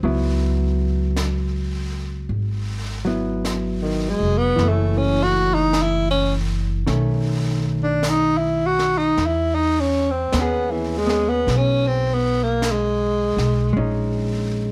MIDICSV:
0, 0, Header, 1, 5, 480
1, 0, Start_track
1, 0, Tempo, 1145038
1, 11, Time_signature, 4, 2, 24, 8
1, 6170, End_track
2, 0, Start_track
2, 0, Title_t, "Tenor saxophone"
2, 0, Program_c, 0, 66
2, 1601, Note_on_c, 0, 51, 60
2, 1715, Note_on_c, 0, 56, 75
2, 1721, Note_off_c, 0, 51, 0
2, 1836, Note_on_c, 0, 59, 81
2, 1842, Note_off_c, 0, 56, 0
2, 1964, Note_on_c, 0, 57, 65
2, 1970, Note_off_c, 0, 59, 0
2, 2087, Note_on_c, 0, 61, 71
2, 2093, Note_off_c, 0, 57, 0
2, 2193, Note_on_c, 0, 66, 87
2, 2200, Note_off_c, 0, 61, 0
2, 2324, Note_on_c, 0, 63, 73
2, 2330, Note_off_c, 0, 66, 0
2, 2440, Note_on_c, 0, 64, 82
2, 2447, Note_off_c, 0, 63, 0
2, 2558, Note_off_c, 0, 64, 0
2, 2560, Note_on_c, 0, 61, 64
2, 2656, Note_off_c, 0, 61, 0
2, 3283, Note_on_c, 0, 62, 64
2, 3393, Note_on_c, 0, 63, 75
2, 3399, Note_off_c, 0, 62, 0
2, 3509, Note_on_c, 0, 64, 70
2, 3516, Note_off_c, 0, 63, 0
2, 3631, Note_on_c, 0, 66, 84
2, 3638, Note_off_c, 0, 64, 0
2, 3765, Note_on_c, 0, 63, 71
2, 3771, Note_off_c, 0, 66, 0
2, 3882, Note_on_c, 0, 64, 74
2, 3889, Note_off_c, 0, 63, 0
2, 4002, Note_on_c, 0, 63, 66
2, 4008, Note_off_c, 0, 64, 0
2, 4108, Note_on_c, 0, 61, 72
2, 4115, Note_off_c, 0, 63, 0
2, 4236, Note_on_c, 0, 60, 63
2, 4242, Note_off_c, 0, 61, 0
2, 4361, Note_on_c, 0, 59, 65
2, 4367, Note_off_c, 0, 60, 0
2, 4489, Note_on_c, 0, 52, 54
2, 4496, Note_off_c, 0, 59, 0
2, 4603, Note_on_c, 0, 56, 77
2, 4609, Note_off_c, 0, 52, 0
2, 4732, Note_on_c, 0, 59, 66
2, 4739, Note_off_c, 0, 56, 0
2, 4850, Note_on_c, 0, 61, 70
2, 4856, Note_off_c, 0, 59, 0
2, 4976, Note_on_c, 0, 60, 60
2, 4983, Note_off_c, 0, 61, 0
2, 5089, Note_on_c, 0, 59, 67
2, 5095, Note_off_c, 0, 60, 0
2, 5211, Note_on_c, 0, 58, 63
2, 5217, Note_off_c, 0, 59, 0
2, 5329, Note_on_c, 0, 56, 66
2, 5336, Note_off_c, 0, 58, 0
2, 5787, Note_off_c, 0, 56, 0
2, 6170, End_track
3, 0, Start_track
3, 0, Title_t, "Hollow-body jazz guitar"
3, 0, Program_c, 1, 26
3, 15, Note_on_c, 1, 54, 39
3, 19, Note_on_c, 1, 59, 39
3, 21, Note_on_c, 1, 64, 38
3, 1273, Note_off_c, 1, 54, 0
3, 1278, Note_on_c, 1, 54, 34
3, 1282, Note_off_c, 1, 59, 0
3, 1285, Note_off_c, 1, 64, 0
3, 1287, Note_on_c, 1, 59, 37
3, 1290, Note_on_c, 1, 64, 37
3, 1910, Note_off_c, 1, 54, 0
3, 1912, Note_on_c, 1, 52, 42
3, 1926, Note_off_c, 1, 59, 0
3, 1927, Note_off_c, 1, 64, 0
3, 1938, Note_on_c, 1, 57, 42
3, 1959, Note_on_c, 1, 61, 42
3, 2876, Note_off_c, 1, 52, 0
3, 2878, Note_off_c, 1, 61, 0
3, 2878, Note_on_c, 1, 51, 35
3, 2879, Note_off_c, 1, 57, 0
3, 2883, Note_on_c, 1, 61, 42
3, 2884, Note_on_c, 1, 57, 41
3, 3843, Note_off_c, 1, 51, 0
3, 3845, Note_off_c, 1, 61, 0
3, 3846, Note_off_c, 1, 57, 0
3, 4336, Note_on_c, 1, 59, 44
3, 4352, Note_on_c, 1, 61, 44
3, 4366, Note_on_c, 1, 68, 51
3, 4636, Note_off_c, 1, 59, 0
3, 4641, Note_on_c, 1, 59, 32
3, 4645, Note_off_c, 1, 61, 0
3, 4647, Note_off_c, 1, 68, 0
3, 4650, Note_on_c, 1, 61, 35
3, 4652, Note_on_c, 1, 68, 37
3, 5756, Note_on_c, 1, 56, 51
3, 5764, Note_off_c, 1, 59, 0
3, 5766, Note_off_c, 1, 61, 0
3, 5770, Note_off_c, 1, 68, 0
3, 5771, Note_on_c, 1, 61, 47
3, 5778, Note_on_c, 1, 63, 50
3, 6170, Note_off_c, 1, 56, 0
3, 6170, Note_off_c, 1, 61, 0
3, 6170, Note_off_c, 1, 63, 0
3, 6170, End_track
4, 0, Start_track
4, 0, Title_t, "Upright bass"
4, 0, Program_c, 2, 32
4, 12, Note_on_c, 2, 37, 63
4, 949, Note_off_c, 2, 37, 0
4, 961, Note_on_c, 2, 32, 57
4, 1741, Note_off_c, 2, 32, 0
4, 1762, Note_on_c, 2, 29, 58
4, 1912, Note_off_c, 2, 29, 0
4, 1921, Note_on_c, 2, 30, 68
4, 2866, Note_off_c, 2, 30, 0
4, 2880, Note_on_c, 2, 35, 59
4, 3827, Note_off_c, 2, 35, 0
4, 3846, Note_on_c, 2, 40, 64
4, 4310, Note_off_c, 2, 40, 0
4, 4331, Note_on_c, 2, 39, 64
4, 4793, Note_off_c, 2, 39, 0
4, 4808, Note_on_c, 2, 35, 67
4, 5587, Note_off_c, 2, 35, 0
4, 5604, Note_on_c, 2, 35, 59
4, 5755, Note_off_c, 2, 35, 0
4, 5771, Note_on_c, 2, 34, 70
4, 6170, Note_off_c, 2, 34, 0
4, 6170, End_track
5, 0, Start_track
5, 0, Title_t, "Drums"
5, 10, Note_on_c, 9, 25, 37
5, 488, Note_off_c, 9, 25, 0
5, 488, Note_on_c, 9, 25, 31
5, 488, Note_on_c, 9, 38, 41
5, 488, Note_on_c, 9, 44, 50
5, 530, Note_off_c, 9, 38, 0
5, 530, Note_off_c, 9, 44, 0
5, 968, Note_off_c, 9, 25, 0
5, 968, Note_on_c, 9, 25, 36
5, 1445, Note_off_c, 9, 25, 0
5, 1445, Note_on_c, 9, 25, 29
5, 1445, Note_on_c, 9, 38, 33
5, 1445, Note_on_c, 9, 44, 38
5, 1487, Note_off_c, 9, 38, 0
5, 1487, Note_off_c, 9, 44, 0
5, 1923, Note_off_c, 9, 25, 0
5, 1923, Note_on_c, 9, 25, 27
5, 1923, Note_on_c, 9, 38, 27
5, 1965, Note_off_c, 9, 38, 0
5, 2403, Note_off_c, 9, 25, 0
5, 2403, Note_on_c, 9, 25, 34
5, 2403, Note_on_c, 9, 38, 39
5, 2403, Note_on_c, 9, 44, 41
5, 2445, Note_off_c, 9, 38, 0
5, 2445, Note_off_c, 9, 44, 0
5, 2881, Note_off_c, 9, 25, 0
5, 2881, Note_on_c, 9, 25, 33
5, 2881, Note_on_c, 9, 38, 24
5, 2923, Note_off_c, 9, 38, 0
5, 3365, Note_off_c, 9, 25, 0
5, 3365, Note_on_c, 9, 25, 28
5, 3365, Note_on_c, 9, 38, 38
5, 3365, Note_on_c, 9, 44, 43
5, 3407, Note_off_c, 9, 38, 0
5, 3407, Note_off_c, 9, 44, 0
5, 3685, Note_on_c, 9, 38, 24
5, 3727, Note_off_c, 9, 38, 0
5, 3846, Note_off_c, 9, 25, 0
5, 3846, Note_on_c, 9, 25, 30
5, 3846, Note_on_c, 9, 38, 25
5, 3888, Note_off_c, 9, 38, 0
5, 4328, Note_off_c, 9, 25, 0
5, 4328, Note_on_c, 9, 25, 32
5, 4328, Note_on_c, 9, 38, 44
5, 4328, Note_on_c, 9, 44, 45
5, 4370, Note_off_c, 9, 38, 0
5, 4370, Note_off_c, 9, 44, 0
5, 4651, Note_on_c, 9, 38, 27
5, 4693, Note_off_c, 9, 38, 0
5, 4812, Note_off_c, 9, 25, 0
5, 4812, Note_on_c, 9, 25, 32
5, 4812, Note_on_c, 9, 38, 25
5, 4853, Note_off_c, 9, 38, 0
5, 5291, Note_off_c, 9, 25, 0
5, 5291, Note_on_c, 9, 25, 31
5, 5291, Note_on_c, 9, 38, 41
5, 5291, Note_on_c, 9, 44, 50
5, 5333, Note_off_c, 9, 38, 0
5, 5333, Note_off_c, 9, 44, 0
5, 5610, Note_on_c, 9, 38, 24
5, 5652, Note_off_c, 9, 38, 0
5, 5769, Note_off_c, 9, 25, 0
5, 5769, Note_on_c, 9, 25, 33
5, 6170, Note_off_c, 9, 25, 0
5, 6170, End_track
0, 0, End_of_file